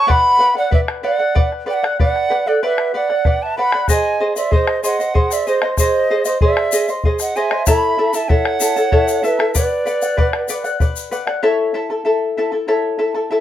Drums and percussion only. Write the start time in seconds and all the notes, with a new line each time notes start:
0.10 bombo rim, bombo low
0.72 bombo low
0.88 bombo rim
1.36 bombo low
1.52 bombo rim
1.84 bombo rim
2.00 bombo low
2.16 bombo rim
2.32 bombo rim
2.63 bombo rim
2.78 bombo rim
3.10 bombo rim
3.25 bombo rim, bombo low
3.72 bombo rim
3.88 bombo rim, bombo low, shaker
4.36 shaker
4.52 bombo low
4.67 bombo rim
4.84 shaker
5.00 shaker
5.15 bombo low
5.31 bombo rim, shaker
5.47 shaker
5.62 bombo rim
5.77 bombo rim, bombo low, shaker
6.25 shaker
6.41 bombo low
6.57 bombo rim
6.72 shaker
6.88 shaker
7.04 bombo low
7.19 bombo rim, shaker
7.36 shaker
7.51 bombo rim
7.66 bombo rim, bombo low, shaker
8.13 shaker
8.30 bombo low
8.45 bombo rim
8.60 shaker
8.76 shaker
8.92 bombo low
9.08 bombo rim, shaker
9.24 shaker
9.40 bombo rim
9.55 bombo low, shaker
9.87 shaker
10.02 shaker
10.18 bombo rim, bombo low
10.33 bombo rim
10.49 shaker
10.65 shaker
10.80 bombo low, shaker
10.96 shaker
11.12 shaker
11.27 bombo rim